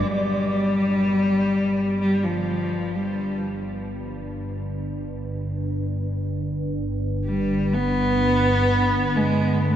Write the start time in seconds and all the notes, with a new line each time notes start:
Already playing: A#2
0.08 G1 G3
2.01 G3
2.24 F3
2.95 G3
7.25 G3
7.74 B3
9.16 G#3
9.62 A3